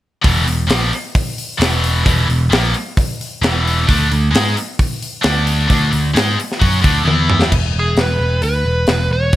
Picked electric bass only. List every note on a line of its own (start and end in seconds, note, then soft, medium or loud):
0.25 0.45 E1 medium
0.46 0.67 E1 medium
0.69 0.90 A#1 medium
1.60 2.02 E1 loud
2.07 2.27 E1 loud
2.29 2.50 E1 medium
2.51 2.72 A#1 medium
3.42 3.84 E1 medium
3.89 4.09 D2 loud
4.12 4.32 D2 medium
4.34 4.55 G#2 medium
5.25 5.67 D2 medium
5.70 5.91 D2 medium
5.93 6.14 D2 medium
6.14 6.36 G#2 medium
6.61 6.82 F#2 medium
6.84 7.04 D2 medium
7.04 7.47 E2 medium
7.52 7.72 E1 medium
7.74 7.94 E1 medium
7.97 8.17 E1 medium
8.19 8.40 E1 medium
8.43 8.63 D2 medium
8.66 8.86 E1 medium
8.88 9.08 E1 medium
9.09 9.30 E1 medium